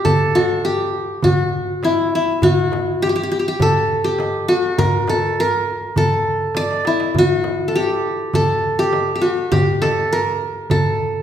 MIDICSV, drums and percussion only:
0, 0, Header, 1, 3, 480
1, 0, Start_track
1, 0, Tempo, 591133
1, 45, Time_signature, 4, 2, 24, 8
1, 9115, End_track
2, 0, Start_track
2, 0, Title_t, "Darbuka"
2, 45, Note_on_c, 9, 64, 76
2, 126, Note_off_c, 9, 64, 0
2, 296, Note_on_c, 9, 63, 64
2, 377, Note_off_c, 9, 63, 0
2, 654, Note_on_c, 9, 62, 27
2, 736, Note_off_c, 9, 62, 0
2, 1009, Note_on_c, 9, 64, 79
2, 1090, Note_off_c, 9, 64, 0
2, 1373, Note_on_c, 9, 62, 23
2, 1454, Note_off_c, 9, 62, 0
2, 1489, Note_on_c, 9, 63, 71
2, 1571, Note_off_c, 9, 63, 0
2, 1611, Note_on_c, 9, 62, 24
2, 1692, Note_off_c, 9, 62, 0
2, 1965, Note_on_c, 9, 64, 85
2, 2047, Note_off_c, 9, 64, 0
2, 2217, Note_on_c, 9, 63, 61
2, 2298, Note_off_c, 9, 63, 0
2, 2573, Note_on_c, 9, 62, 24
2, 2654, Note_off_c, 9, 62, 0
2, 2922, Note_on_c, 9, 64, 86
2, 3003, Note_off_c, 9, 64, 0
2, 3299, Note_on_c, 9, 62, 23
2, 3381, Note_off_c, 9, 62, 0
2, 3410, Note_on_c, 9, 63, 68
2, 3491, Note_off_c, 9, 63, 0
2, 3531, Note_on_c, 9, 62, 24
2, 3612, Note_off_c, 9, 62, 0
2, 3886, Note_on_c, 9, 64, 102
2, 3967, Note_off_c, 9, 64, 0
2, 4005, Note_on_c, 9, 62, 25
2, 4086, Note_off_c, 9, 62, 0
2, 4121, Note_on_c, 9, 63, 62
2, 4203, Note_off_c, 9, 63, 0
2, 4373, Note_on_c, 9, 62, 24
2, 4454, Note_off_c, 9, 62, 0
2, 4492, Note_on_c, 9, 62, 24
2, 4573, Note_off_c, 9, 62, 0
2, 4608, Note_on_c, 9, 62, 27
2, 4689, Note_off_c, 9, 62, 0
2, 4843, Note_on_c, 9, 64, 79
2, 4924, Note_off_c, 9, 64, 0
2, 5204, Note_on_c, 9, 62, 23
2, 5285, Note_off_c, 9, 62, 0
2, 5330, Note_on_c, 9, 63, 55
2, 5411, Note_off_c, 9, 63, 0
2, 5447, Note_on_c, 9, 62, 61
2, 5528, Note_off_c, 9, 62, 0
2, 5562, Note_on_c, 9, 63, 70
2, 5643, Note_off_c, 9, 63, 0
2, 5684, Note_on_c, 9, 62, 81
2, 5765, Note_off_c, 9, 62, 0
2, 5802, Note_on_c, 9, 64, 75
2, 5883, Note_off_c, 9, 64, 0
2, 6041, Note_on_c, 9, 63, 53
2, 6122, Note_off_c, 9, 63, 0
2, 6405, Note_on_c, 9, 62, 23
2, 6486, Note_off_c, 9, 62, 0
2, 6772, Note_on_c, 9, 64, 85
2, 6853, Note_off_c, 9, 64, 0
2, 7135, Note_on_c, 9, 62, 21
2, 7216, Note_off_c, 9, 62, 0
2, 7251, Note_on_c, 9, 63, 65
2, 7332, Note_off_c, 9, 63, 0
2, 7378, Note_on_c, 9, 62, 23
2, 7459, Note_off_c, 9, 62, 0
2, 7735, Note_on_c, 9, 64, 84
2, 7816, Note_off_c, 9, 64, 0
2, 7981, Note_on_c, 9, 63, 71
2, 8063, Note_off_c, 9, 63, 0
2, 8339, Note_on_c, 9, 62, 22
2, 8421, Note_off_c, 9, 62, 0
2, 8697, Note_on_c, 9, 64, 85
2, 8778, Note_off_c, 9, 64, 0
2, 9115, End_track
3, 0, Start_track
3, 0, Title_t, "Frame drum"
3, 39, Note_on_c, 9, 64, 91
3, 121, Note_off_c, 9, 64, 0
3, 994, Note_on_c, 9, 64, 92
3, 1076, Note_off_c, 9, 64, 0
3, 1483, Note_on_c, 9, 64, 67
3, 1564, Note_off_c, 9, 64, 0
3, 1970, Note_on_c, 9, 64, 81
3, 2051, Note_off_c, 9, 64, 0
3, 2208, Note_on_c, 9, 64, 70
3, 2290, Note_off_c, 9, 64, 0
3, 2921, Note_on_c, 9, 64, 86
3, 3002, Note_off_c, 9, 64, 0
3, 3399, Note_on_c, 9, 64, 72
3, 3480, Note_off_c, 9, 64, 0
3, 3882, Note_on_c, 9, 64, 82
3, 3963, Note_off_c, 9, 64, 0
3, 4128, Note_on_c, 9, 64, 69
3, 4210, Note_off_c, 9, 64, 0
3, 4839, Note_on_c, 9, 64, 84
3, 4920, Note_off_c, 9, 64, 0
3, 5316, Note_on_c, 9, 64, 71
3, 5397, Note_off_c, 9, 64, 0
3, 5808, Note_on_c, 9, 64, 76
3, 5889, Note_off_c, 9, 64, 0
3, 6043, Note_on_c, 9, 64, 74
3, 6124, Note_off_c, 9, 64, 0
3, 6767, Note_on_c, 9, 64, 85
3, 6848, Note_off_c, 9, 64, 0
3, 7249, Note_on_c, 9, 64, 72
3, 7330, Note_off_c, 9, 64, 0
3, 7727, Note_on_c, 9, 64, 94
3, 7809, Note_off_c, 9, 64, 0
3, 7971, Note_on_c, 9, 64, 69
3, 8052, Note_off_c, 9, 64, 0
3, 8687, Note_on_c, 9, 64, 88
3, 8768, Note_off_c, 9, 64, 0
3, 9115, End_track
0, 0, End_of_file